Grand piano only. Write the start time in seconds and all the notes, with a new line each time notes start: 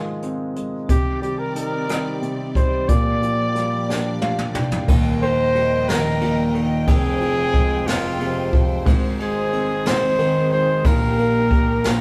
Already playing: G#2 D#3 F3 G#3
0.23 C4
0.56 G#3
0.89 C3
1.22 G3
1.56 D#4
1.89 G3
2.22 C3
2.56 G3
2.89 A#2
3.22 F3
3.55 G3
3.89 D4
4.22 F4 F5
4.55 D4 G5
4.88 D#1 D#2
5.22 D#3
5.55 G3
5.89 D#3
6.22 A#2
6.55 D#3
6.88 F1 F2
7.21 F3
7.54 G#3
7.86 F3
8.20 C3
8.53 F3
8.85 G#1 G#2
9.19 G#3
9.53 C4
9.86 G#3
10.19 D#3
10.52 G#3
10.85 A#1 A#2
11.18 A#3
11.52 G4
11.85 A#1 A#2